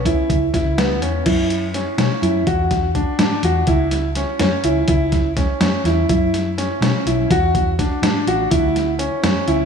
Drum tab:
CC |-----|x----|-----|-----|
HH |xxxxx|xxxxx|xxxxx|xxxxx|
SD |--oo-|--oo-|-o-o-|-ooo-|
BD |ooo--|o----|ooo--|o----|

CC |-----|-----|-----|-----|
HH |xxxxx|xxxxx|xxxxx|xxxxx|
SD |-oooo|-ooo-|--oo-|-o-o-|
BD |ooo--|o----|ooo--|o----|